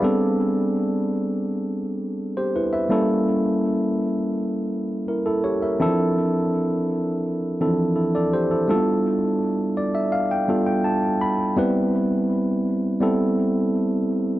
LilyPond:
\new Staff \with { instrumentName = "Tine electric piano" } { \time 4/4 \key a \minor \tempo 4 = 83 << { <gis' d''>16 r2. <g' c''>16 <e' b'>16 <b' e''>16~ | <b' e''>16 r2 r8. <e' bes'>16 <e' a'>16 <g' cis''>16 <bes' e''>16~ | <bes' e''>16 r2 r8. <e' a'>16 <a' d''>16 <g' c''>16 <e' a'>16~ | <e' a'>16 r4 r16 d''16 e''16 f''16 g''8 g''16 a''8 b''8 |
r1 | } \\ { <g b c' d' a'>1 | <g bes cis' e' a'>1 | <e f c' d' e' a'>2~ <e f c' d' e' a'>8 <e f c' d' e' a'>4. | <g a b d' f' a'>2~ <g a b d' f' a'>8 <g b d' f' a'>4. |
<g b c' e' b'>2 <g b c' e' a'>2 | } >> }